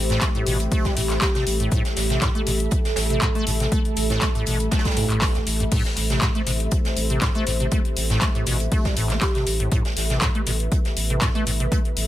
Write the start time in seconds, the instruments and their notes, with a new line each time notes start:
Already playing: sub bass A1, analog synth pad A3 G4 C5, ambient pad A4 E5 B5
0.10 acid bass A2, snare, closed hi-hat
0.21 acid bass A3, kick, snare, clap, closed hi-hat
0.35 acid bass A2, closed hi-hat
0.46 sub bass A1, acid bass B2, closed hi-hat, open hi-hat
0.60 closed hi-hat
0.71 acid bass A3, kick, closed hi-hat, open hi-hat
0.85 acid bass G3, kick, snare, closed hi-hat
0.97 sub bass A1, acid bass A2, closed hi-hat, open hi-hat
1.10 snare, clap, closed hi-hat
1.22 marimba G4, kick, snare, clap, closed hi-hat
1.35 acid bass C3, marimba G4, snare, closed hi-hat
1.47 sub bass A1, closed hi-hat, open hi-hat
1.60 acid bass A2, closed hi-hat
1.71 acid bass A2, analog synth pad A4, kick, closed hi-hat
1.85 snare, closed hi-hat
1.96 sub bass A1, snare, closed hi-hat, open hi-hat
2.10 acid bass C3, snare, closed hi-hat
2.21 acid bass A2, kick, snare, clap, closed hi-hat
2.35 acid bass A3, closed hi-hat
2.47 sub bass A1, acid bass B2, closed hi-hat, open hi-hat
2.60 closed hi-hat
2.71 kick, closed hi-hat
2.85 snare, closed hi-hat
2.96 sub bass A1, snare, closed hi-hat, open hi-hat
3.10 acid bass C3, closed hi-hat
3.22 acid bass A2, kick, clap, closed hi-hat
3.35 acid bass A3, closed hi-hat
3.47 sub bass A1, acid bass A2, closed hi-hat, open hi-hat
3.60 acid bass C3, snare, closed hi-hat
3.72 acid bass A3, kick, closed hi-hat
3.85 closed hi-hat
3.96 sub bass A1, closed hi-hat, open hi-hat
4.10 acid bass A2, snare, closed hi-hat
4.21 acid bass A3, kick, snare, clap, closed hi-hat
4.35 acid bass A2, closed hi-hat
4.46 sub bass A1, acid bass B2, closed hi-hat, open hi-hat
4.59 closed hi-hat
4.71 acid bass A3, kick, snare, closed hi-hat
4.79 snare, closed hi-hat
4.85 acid bass G3, kick, snare, closed hi-hat
4.91 snare, closed hi-hat
4.97 acid bass G2, sub bass A2, closed hi-hat, open hi-hat
5.10 acid bass A1, clap, closed hi-hat
5.22 kick, snare, clap, closed hi-hat, open hi-hat
5.35 acid bass B2, snare, closed hi-hat
5.47 sub bass A1, closed hi-hat, open hi-hat
5.60 acid bass G2, closed hi-hat
5.71 acid bass A2, analog synth pad C5, kick, closed hi-hat, crash
5.85 snare, closed hi-hat
5.96 sub bass A1, snare, closed hi-hat, open hi-hat
6.10 acid bass C3, snare, closed hi-hat
6.22 acid bass A2, kick, snare, clap, closed hi-hat
6.35 acid bass A3, closed hi-hat
6.47 sub bass A1, acid bass B2, closed hi-hat, open hi-hat
6.60 closed hi-hat
6.71 kick, closed hi-hat
6.85 snare, closed hi-hat
6.96 sub bass A1, closed hi-hat, open hi-hat
7.10 acid bass C3, closed hi-hat
7.22 acid bass A2, kick, snare, clap, closed hi-hat
7.35 acid bass A3, closed hi-hat
7.47 sub bass A1, acid bass A2, closed hi-hat, open hi-hat
7.60 acid bass C3, closed hi-hat
7.71 acid bass A3, kick, closed hi-hat
7.85 closed hi-hat
7.97 sub bass A1, closed hi-hat, open hi-hat
8.10 acid bass A2, snare, closed hi-hat
8.21 acid bass A3, kick, snare, clap, closed hi-hat
8.35 acid bass A2, closed hi-hat
8.46 sub bass A1, acid bass B2, closed hi-hat, open hi-hat
8.60 closed hi-hat
8.71 acid bass A3, kick, closed hi-hat, open hi-hat
8.85 acid bass G3, kick, snare, closed hi-hat
8.96 sub bass A1, acid bass A2, closed hi-hat, open hi-hat
9.10 acid bass C4, snare, clap, closed hi-hat
9.21 marimba G4, kick, snare, clap, closed hi-hat
9.35 acid bass C3, marimba G4, snare, closed hi-hat
9.47 sub bass A1, closed hi-hat, open hi-hat
9.60 acid bass A2, closed hi-hat
9.72 acid bass A2, analog synth pad B4, kick, closed hi-hat
9.85 snare, closed hi-hat
9.97 sub bass A1, snare, closed hi-hat, open hi-hat
10.10 acid bass C3, snare, closed hi-hat
10.21 acid bass A2, kick, snare, clap, closed hi-hat
10.35 acid bass A3, closed hi-hat
10.46 sub bass A1, acid bass B2, closed hi-hat, open hi-hat
10.60 closed hi-hat
10.72 kick, closed hi-hat
10.85 snare, closed hi-hat
10.97 sub bass A1, closed hi-hat, open hi-hat
11.10 acid bass C3, closed hi-hat
11.21 acid bass A2, kick, snare, clap, closed hi-hat
11.35 acid bass A3, closed hi-hat
11.47 sub bass A1, acid bass A2, closed hi-hat, open hi-hat
11.60 acid bass C3, closed hi-hat
11.72 acid bass A3, kick, closed hi-hat
11.85 closed hi-hat
11.97 sub bass A1, closed hi-hat, open hi-hat